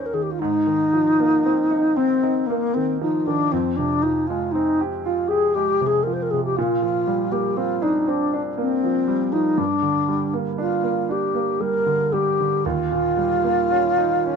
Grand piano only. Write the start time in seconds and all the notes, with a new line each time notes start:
Already playing: D#2 C#4 D#4
0.13 D#3
0.42 G#2
0.67 D#3
0.93 F3
1.20 A#3
1.45 C4
1.71 D#4
1.97 C4
2.23 D#4
2.50 A#3
2.76 D#3
3.01 F3
3.27 D#3
3.53 F2
3.78 C3
4.04 F3
4.30 G#3
4.55 C4
4.81 G4
5.06 F4
5.31 G4
5.56 G#3
5.81 C3
6.07 F3
6.33 C3
6.58 A#2
6.82 F3
7.07 G3
7.32 A#3
7.57 C4
7.82 D4
8.08 C4
8.33 D4
8.57 A#3
8.83 F3
9.08 G3
9.33 F3
9.58 G2
9.82 D3
10.09 G3
10.33 A#3
10.58 D4
10.83 A#3
11.09 D4
11.34 A#3
11.61 G3
11.86 D3
12.13 G3
12.40 D3
12.66 D#2
12.92 A#2
13.17 G3
13.44 A#3
13.71 C#4
13.98 D#4
14.26 C#4